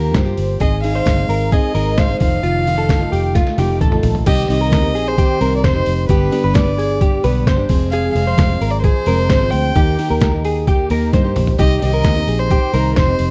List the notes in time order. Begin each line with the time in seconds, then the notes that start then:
Already playing: D#2 D#3 A#3 F4 G4 A#4
0.14 G2 C5, kick, snare, closed hi-hat
0.25 A#3 F4 G4
0.37 G1, open hi-hat
0.60 G#1 G#3 C4 D#4 G#4 D#5, kick, closed hi-hat
0.83 G#2 D#3 G#3 C4 D#4 G#4 F5, open hi-hat
0.95 C5
1.06 G1, kick, snare, closed hi-hat
1.18 G#3 C4 D#4 G#4
1.29 G#1 A#4, open hi-hat
1.52 G#3 C4 D#4 G#4 D#5, kick, closed hi-hat
1.75 G#1 G#2 D#3 G#3 C4 D#4 G#4 A#4, open hi-hat
1.98 C5 F5, kick, snare, closed hi-hat
2.09 G#3 C4 D#4 G#4
2.20 F1 F2 C3 D#3 A3 D#4 F4 F5, kick, open hi-hat
2.43 F1 F4, closed hi-hat
2.66 F2 C3 D#3 A3 D#4 F4, open hi-hat
2.78 A4
2.89 G1, kick, snare, closed hi-hat
3.00 D#3 A3 D#4 F4
3.12 F1 G4, open hi-hat
3.34 D#3 A3 D#4 F4, kick, snare, closed hi-hat
3.47 snare
3.57 F1 F2 C3 D#3 A3 D#4 F4 G4, open hi-hat, high tom
3.81 A1 A4, kick, closed hi-hat
3.91 D#3 A3 D#4 F4, mid tom
4.03 A#1, floor tom, open hi-hat
4.15 floor tom
4.25 C2 C3 D#3 C4 D#4 G4 D#5, kick, closed hi-hat, crash
4.49 C2 C3 D#3 C4 D#4 G4 D#5, open hi-hat
4.61 A#4
4.72 D#2, kick, snare, closed hi-hat
4.82 C4 D#4 G4
4.95 A#1 G#4, open hi-hat
5.08 C5
5.17 D#3 C4 D#4 G4, kick, closed hi-hat
5.40 C2 C3 D#3 C4 D#4 G4 A#4, open hi-hat
5.56 D5
5.64 F1 C5, kick, snare, closed hi-hat
5.74 C4 D#4 G4
5.86 F1, open hi-hat
6.09 G1 G2 D3 G3 B3 D4 G4 B4, kick, closed hi-hat
6.31 G2 D3 G3 B3 D4 G4, open hi-hat
6.44 G1 B4
6.54 D5, kick, snare, closed hi-hat
6.66 G3 B3 D4 G4
6.78 G#4, open hi-hat
7.00 G3 B3 D4 G4, kick, closed hi-hat
7.23 B1 G2 D3 G3 B3 D4 G4 B4, open hi-hat
7.47 G1 C5, kick, snare, closed hi-hat
7.57 G3 B3 D4 G4
7.68 F1 F2 C3 F3 G#3 C4 G#4, kick, open hi-hat
7.91 G#4 F5, closed hi-hat
8.14 F1 F2 C3 F3 G#3 C4 G#4 F5, open hi-hat
8.27 C5
8.38 F1, kick, snare, closed hi-hat
8.49 F3 G#3 C4 G#4
8.61 G#1 A#4, open hi-hat
8.70 D5
8.82 F3 G#3 C4 G#4 C5, kick, closed hi-hat
8.86 G#4
9.06 F1 F2 C3 F3 G#3 C4 G#4 A#4, open hi-hat
9.30 G#1 C5, kick, snare, closed hi-hat
9.41 F3 G#3 C4 G#4
9.51 D2 G5, open hi-hat
9.75 D#2 D#3 A#3 D#4 G4, kick, closed hi-hat
9.98 D#3 A#3 D#4 G4, open hi-hat
10.10 D#2 A#4
10.21 kick, snare, closed hi-hat
10.33 A#3 D#4 G4
10.45 G#4, open hi-hat
10.67 D#3 A#3 D#4 G4, kick, closed hi-hat
10.90 D#2 D#3 A#3 D#4 G4 A#4, open hi-hat
11.13 G2 C5, kick, snare, closed hi-hat
11.25 A#3 D#4 G4
11.36 A#1, mid tom, open hi-hat
11.47 floor tom
11.59 C2 C3 D#3 C4 D#4 G4 D#5, kick, closed hi-hat
11.81 C2 C3 D#3 C4 D#4 G4 D#5, open hi-hat
11.94 A#4
12.04 D#2, kick, snare, closed hi-hat
12.16 C4 D#4 G4
12.28 A#1 G#4, open hi-hat
12.39 C5
12.50 D#3 C4 D#4 G4, kick, closed hi-hat
12.74 C2 C3 D#3 C4 D#4 G4 A#4, open hi-hat
12.96 F1 C5, kick, snare, closed hi-hat
13.07 C4 D#4 G4
13.19 F1, open hi-hat